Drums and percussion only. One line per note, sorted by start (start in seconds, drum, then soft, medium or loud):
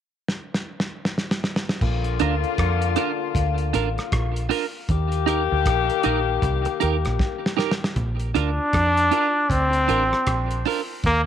0.29 snare medium
0.55 snare medium
0.80 snare medium
1.05 snare medium
1.18 snare medium
1.31 snare medium
1.44 snare medium
1.56 snare medium
1.69 snare medium
1.81 kick loud
1.81 crash medium
2.04 closed hi-hat soft
2.19 closed hi-hat medium
2.44 closed hi-hat soft
2.58 kick medium
2.58 cross-stick medium
2.58 closed hi-hat medium
2.82 closed hi-hat soft
2.96 closed hi-hat medium
3.35 kick loud
3.35 closed hi-hat medium
3.58 closed hi-hat soft
3.74 closed hi-hat medium
3.98 cross-stick medium
3.98 closed hi-hat soft
4.12 kick loud
4.12 cross-stick loud
4.12 closed hi-hat medium
4.36 closed hi-hat soft
4.51 open hi-hat medium
4.89 kick medium
4.89 closed hi-hat medium
5.12 closed hi-hat soft
5.28 closed hi-hat medium
5.66 kick medium
5.66 cross-stick medium
5.66 closed hi-hat loud
5.90 closed hi-hat soft
6.03 closed hi-hat medium
6.42 kick loud
6.42 closed hi-hat medium
6.65 closed hi-hat soft
6.81 closed hi-hat medium
7.05 cross-stick medium
7.05 closed hi-hat soft
7.19 kick loud
7.19 snare medium
7.46 snare medium
7.59 snare medium
7.71 snare medium
7.84 snare medium
7.96 kick loud
7.96 closed hi-hat medium
8.20 closed hi-hat soft
8.35 closed hi-hat medium
8.73 kick loud
8.73 cross-stick medium
8.73 closed hi-hat medium
8.97 closed hi-hat soft
9.12 closed hi-hat medium
9.50 kick loud
9.50 closed hi-hat medium
9.73 closed hi-hat soft
9.89 closed hi-hat medium
10.13 cross-stick medium
10.27 kick loud
10.27 cross-stick loud
10.27 closed hi-hat medium
10.51 closed hi-hat medium
10.65 open hi-hat medium
11.04 kick loud
11.04 closed hi-hat medium